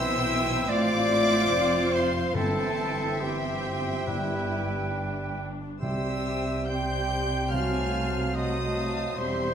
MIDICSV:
0, 0, Header, 1, 13, 480
1, 0, Start_track
1, 0, Key_signature, 0, "major"
1, 0, Tempo, 824176
1, 1368, Tempo, 865801
1, 1369, Time_signature, 4, 2, 24, 8
1, 3768, Tempo, 828729
1, 5426, End_track
2, 0, Start_track
2, 0, Title_t, "Violin section"
2, 0, Program_c, 0, 48
2, 0, Note_on_c, 0, 88, 110
2, 403, Note_off_c, 0, 88, 0
2, 403, Note_on_c, 0, 86, 117
2, 1123, Note_off_c, 0, 86, 0
2, 1127, Note_on_c, 0, 84, 87
2, 1372, Note_off_c, 0, 84, 0
2, 1373, Note_on_c, 0, 81, 92
2, 1839, Note_off_c, 0, 81, 0
2, 1847, Note_on_c, 0, 79, 77
2, 2809, Note_off_c, 0, 79, 0
2, 3289, Note_on_c, 0, 88, 76
2, 3746, Note_off_c, 0, 88, 0
2, 3763, Note_on_c, 0, 91, 91
2, 4241, Note_off_c, 0, 91, 0
2, 4254, Note_on_c, 0, 89, 76
2, 4739, Note_off_c, 0, 89, 0
2, 4745, Note_on_c, 0, 87, 83
2, 5208, Note_off_c, 0, 87, 0
2, 5219, Note_on_c, 0, 84, 75
2, 5426, Note_off_c, 0, 84, 0
2, 5426, End_track
3, 0, Start_track
3, 0, Title_t, "Flute section"
3, 0, Program_c, 1, 73
3, 0, Note_on_c, 1, 79, 73
3, 391, Note_off_c, 1, 79, 0
3, 402, Note_on_c, 1, 77, 69
3, 1368, Note_on_c, 1, 79, 55
3, 1370, Note_off_c, 1, 77, 0
3, 1835, Note_off_c, 1, 79, 0
3, 1841, Note_on_c, 1, 79, 54
3, 2312, Note_off_c, 1, 79, 0
3, 2318, Note_on_c, 1, 79, 54
3, 3087, Note_off_c, 1, 79, 0
3, 3284, Note_on_c, 1, 79, 48
3, 3743, Note_off_c, 1, 79, 0
3, 3766, Note_on_c, 1, 79, 48
3, 4243, Note_off_c, 1, 79, 0
3, 4254, Note_on_c, 1, 81, 51
3, 4739, Note_off_c, 1, 81, 0
3, 4745, Note_on_c, 1, 81, 48
3, 5208, Note_off_c, 1, 81, 0
3, 5213, Note_on_c, 1, 84, 56
3, 5426, Note_off_c, 1, 84, 0
3, 5426, End_track
4, 0, Start_track
4, 0, Title_t, "Violin section"
4, 0, Program_c, 2, 48
4, 0, Note_on_c, 2, 79, 79
4, 394, Note_off_c, 2, 79, 0
4, 396, Note_on_c, 2, 77, 74
4, 631, Note_off_c, 2, 77, 0
4, 636, Note_on_c, 2, 76, 66
4, 877, Note_off_c, 2, 76, 0
4, 889, Note_on_c, 2, 77, 77
4, 1127, Note_off_c, 2, 77, 0
4, 1144, Note_on_c, 2, 77, 70
4, 1375, Note_off_c, 2, 77, 0
4, 1379, Note_on_c, 2, 76, 74
4, 3057, Note_off_c, 2, 76, 0
4, 4263, Note_on_c, 2, 80, 58
4, 4720, Note_off_c, 2, 80, 0
4, 4745, Note_on_c, 2, 78, 52
4, 4981, Note_off_c, 2, 78, 0
4, 4988, Note_on_c, 2, 77, 58
4, 5219, Note_off_c, 2, 77, 0
4, 5229, Note_on_c, 2, 76, 59
4, 5426, Note_off_c, 2, 76, 0
4, 5426, End_track
5, 0, Start_track
5, 0, Title_t, "Clarinet"
5, 0, Program_c, 3, 71
5, 0, Note_on_c, 3, 76, 104
5, 400, Note_on_c, 3, 74, 93
5, 409, Note_off_c, 3, 76, 0
5, 1108, Note_on_c, 3, 72, 76
5, 1116, Note_off_c, 3, 74, 0
5, 1364, Note_on_c, 3, 69, 83
5, 1372, Note_off_c, 3, 72, 0
5, 1848, Note_on_c, 3, 67, 60
5, 1856, Note_off_c, 3, 69, 0
5, 2810, Note_off_c, 3, 67, 0
5, 3300, Note_on_c, 3, 76, 72
5, 3775, Note_on_c, 3, 79, 72
5, 3784, Note_off_c, 3, 76, 0
5, 4245, Note_off_c, 3, 79, 0
5, 4249, Note_on_c, 3, 77, 63
5, 4742, Note_on_c, 3, 75, 55
5, 4751, Note_off_c, 3, 77, 0
5, 5216, Note_on_c, 3, 72, 70
5, 5224, Note_off_c, 3, 75, 0
5, 5426, Note_off_c, 3, 72, 0
5, 5426, End_track
6, 0, Start_track
6, 0, Title_t, "Trumpet"
6, 0, Program_c, 4, 56
6, 0, Note_on_c, 4, 76, 92
6, 401, Note_on_c, 4, 74, 104
6, 410, Note_off_c, 4, 76, 0
6, 1119, Note_on_c, 4, 72, 77
6, 1128, Note_off_c, 4, 74, 0
6, 1365, Note_on_c, 4, 69, 75
6, 1374, Note_off_c, 4, 72, 0
6, 1841, Note_on_c, 4, 67, 57
6, 1849, Note_off_c, 4, 69, 0
6, 2807, Note_off_c, 4, 67, 0
6, 3286, Note_on_c, 4, 76, 57
6, 3761, Note_on_c, 4, 79, 58
6, 3770, Note_off_c, 4, 76, 0
6, 4248, Note_on_c, 4, 77, 65
6, 4256, Note_off_c, 4, 79, 0
6, 4733, Note_on_c, 4, 75, 61
6, 4742, Note_off_c, 4, 77, 0
6, 5206, Note_off_c, 4, 75, 0
6, 5210, Note_on_c, 4, 72, 59
6, 5426, Note_off_c, 4, 72, 0
6, 5426, End_track
7, 0, Start_track
7, 0, Title_t, "Oboe"
7, 0, Program_c, 5, 68
7, 0, Note_on_c, 5, 72, 71
7, 387, Note_off_c, 5, 72, 0
7, 390, Note_on_c, 5, 72, 76
7, 1345, Note_off_c, 5, 72, 0
7, 1369, Note_on_c, 5, 72, 63
7, 1838, Note_off_c, 5, 72, 0
7, 1842, Note_on_c, 5, 72, 54
7, 2316, Note_off_c, 5, 72, 0
7, 2319, Note_on_c, 5, 71, 53
7, 3088, Note_off_c, 5, 71, 0
7, 3283, Note_on_c, 5, 72, 52
7, 3743, Note_off_c, 5, 72, 0
7, 3773, Note_on_c, 5, 72, 57
7, 4246, Note_off_c, 5, 72, 0
7, 4260, Note_on_c, 5, 72, 47
7, 4732, Note_off_c, 5, 72, 0
7, 4747, Note_on_c, 5, 72, 58
7, 5209, Note_off_c, 5, 72, 0
7, 5223, Note_on_c, 5, 72, 66
7, 5426, Note_off_c, 5, 72, 0
7, 5426, End_track
8, 0, Start_track
8, 0, Title_t, "French horn section"
8, 0, Program_c, 6, 60
8, 0, Note_on_c, 6, 60, 80
8, 0, Note_on_c, 6, 64, 77
8, 396, Note_off_c, 6, 60, 0
8, 398, Note_off_c, 6, 64, 0
8, 415, Note_on_c, 6, 60, 86
8, 415, Note_on_c, 6, 65, 90
8, 1357, Note_off_c, 6, 60, 0
8, 1374, Note_on_c, 6, 60, 60
8, 1376, Note_off_c, 6, 65, 0
8, 1377, Note_on_c, 6, 64, 66
8, 1840, Note_off_c, 6, 60, 0
8, 1842, Note_off_c, 6, 64, 0
8, 1847, Note_on_c, 6, 60, 56
8, 1849, Note_on_c, 6, 64, 55
8, 2320, Note_off_c, 6, 60, 0
8, 2321, Note_off_c, 6, 64, 0
8, 2339, Note_on_c, 6, 67, 51
8, 2340, Note_on_c, 6, 59, 51
8, 3113, Note_off_c, 6, 67, 0
8, 3114, Note_off_c, 6, 59, 0
8, 3300, Note_on_c, 6, 60, 58
8, 3302, Note_on_c, 6, 67, 55
8, 4234, Note_off_c, 6, 60, 0
8, 4235, Note_off_c, 6, 67, 0
8, 4253, Note_on_c, 6, 66, 50
8, 4255, Note_on_c, 6, 57, 50
8, 5212, Note_on_c, 6, 55, 62
8, 5213, Note_on_c, 6, 67, 60
8, 5214, Note_off_c, 6, 66, 0
8, 5215, Note_off_c, 6, 57, 0
8, 5426, Note_off_c, 6, 55, 0
8, 5426, Note_off_c, 6, 67, 0
8, 5426, End_track
9, 0, Start_track
9, 0, Title_t, "Viola section"
9, 0, Program_c, 7, 48
9, 0, Note_on_c, 7, 60, 78
9, 0, Note_on_c, 7, 64, 81
9, 393, Note_off_c, 7, 60, 0
9, 394, Note_off_c, 7, 64, 0
9, 404, Note_on_c, 7, 65, 84
9, 409, Note_on_c, 7, 60, 84
9, 1354, Note_off_c, 7, 60, 0
9, 1369, Note_on_c, 7, 60, 69
9, 1371, Note_off_c, 7, 65, 0
9, 1371, Note_on_c, 7, 64, 64
9, 1837, Note_off_c, 7, 60, 0
9, 1838, Note_off_c, 7, 64, 0
9, 1848, Note_on_c, 7, 60, 72
9, 2308, Note_off_c, 7, 60, 0
9, 2325, Note_on_c, 7, 64, 71
9, 2804, Note_on_c, 7, 62, 53
9, 2807, Note_off_c, 7, 64, 0
9, 3291, Note_off_c, 7, 62, 0
9, 3291, Note_on_c, 7, 67, 58
9, 3292, Note_on_c, 7, 60, 55
9, 3747, Note_off_c, 7, 67, 0
9, 3748, Note_off_c, 7, 60, 0
9, 3774, Note_on_c, 7, 67, 57
9, 3777, Note_on_c, 7, 60, 59
9, 4246, Note_off_c, 7, 67, 0
9, 4248, Note_off_c, 7, 60, 0
9, 4261, Note_on_c, 7, 57, 55
9, 4264, Note_on_c, 7, 66, 53
9, 4733, Note_off_c, 7, 57, 0
9, 4734, Note_off_c, 7, 66, 0
9, 4742, Note_on_c, 7, 57, 59
9, 4744, Note_on_c, 7, 66, 55
9, 5207, Note_off_c, 7, 57, 0
9, 5207, Note_off_c, 7, 66, 0
9, 5219, Note_on_c, 7, 60, 58
9, 5221, Note_on_c, 7, 67, 55
9, 5426, Note_off_c, 7, 60, 0
9, 5426, Note_off_c, 7, 67, 0
9, 5426, End_track
10, 0, Start_track
10, 0, Title_t, "Bassoon"
10, 0, Program_c, 8, 70
10, 0, Note_on_c, 8, 52, 70
10, 395, Note_off_c, 8, 52, 0
10, 399, Note_on_c, 8, 53, 81
10, 1349, Note_off_c, 8, 53, 0
10, 1369, Note_on_c, 8, 52, 57
10, 1838, Note_off_c, 8, 52, 0
10, 1851, Note_on_c, 8, 52, 57
10, 2091, Note_on_c, 8, 53, 53
10, 2099, Note_off_c, 8, 52, 0
10, 2331, Note_on_c, 8, 55, 59
10, 2340, Note_off_c, 8, 53, 0
10, 3109, Note_off_c, 8, 55, 0
10, 3299, Note_on_c, 8, 55, 55
10, 3751, Note_off_c, 8, 55, 0
10, 3771, Note_on_c, 8, 55, 51
10, 4245, Note_off_c, 8, 55, 0
10, 4251, Note_on_c, 8, 54, 55
10, 4728, Note_off_c, 8, 54, 0
10, 4741, Note_on_c, 8, 54, 55
10, 5214, Note_on_c, 8, 55, 55
10, 5223, Note_off_c, 8, 54, 0
10, 5426, Note_off_c, 8, 55, 0
10, 5426, End_track
11, 0, Start_track
11, 0, Title_t, "Timpani"
11, 0, Program_c, 10, 47
11, 1367, Note_on_c, 10, 43, 80
11, 2065, Note_off_c, 10, 43, 0
11, 2326, Note_on_c, 10, 43, 84
11, 3028, Note_off_c, 10, 43, 0
11, 3294, Note_on_c, 10, 48, 77
11, 3992, Note_off_c, 10, 48, 0
11, 4264, Note_on_c, 10, 48, 75
11, 4959, Note_off_c, 10, 48, 0
11, 5426, End_track
12, 0, Start_track
12, 0, Title_t, "Cello section"
12, 0, Program_c, 11, 48
12, 0, Note_on_c, 11, 47, 74
12, 404, Note_off_c, 11, 47, 0
12, 405, Note_on_c, 11, 45, 76
12, 879, Note_on_c, 11, 41, 66
12, 880, Note_off_c, 11, 45, 0
12, 1370, Note_off_c, 11, 41, 0
12, 1371, Note_on_c, 11, 43, 62
12, 2311, Note_off_c, 11, 43, 0
12, 2325, Note_on_c, 11, 43, 62
12, 3159, Note_off_c, 11, 43, 0
12, 3294, Note_on_c, 11, 48, 61
12, 5192, Note_off_c, 11, 48, 0
12, 5215, Note_on_c, 11, 40, 61
12, 5426, Note_off_c, 11, 40, 0
12, 5426, End_track
13, 0, Start_track
13, 0, Title_t, "Double bass section"
13, 0, Program_c, 12, 48
13, 0, Note_on_c, 12, 35, 75
13, 405, Note_off_c, 12, 35, 0
13, 407, Note_on_c, 12, 33, 78
13, 879, Note_on_c, 12, 29, 67
13, 881, Note_off_c, 12, 33, 0
13, 1370, Note_off_c, 12, 29, 0
13, 1372, Note_on_c, 12, 31, 68
13, 2312, Note_off_c, 12, 31, 0
13, 2330, Note_on_c, 12, 31, 59
13, 3161, Note_off_c, 12, 31, 0
13, 3297, Note_on_c, 12, 36, 58
13, 5193, Note_off_c, 12, 36, 0
13, 5219, Note_on_c, 12, 28, 66
13, 5426, Note_off_c, 12, 28, 0
13, 5426, End_track
0, 0, End_of_file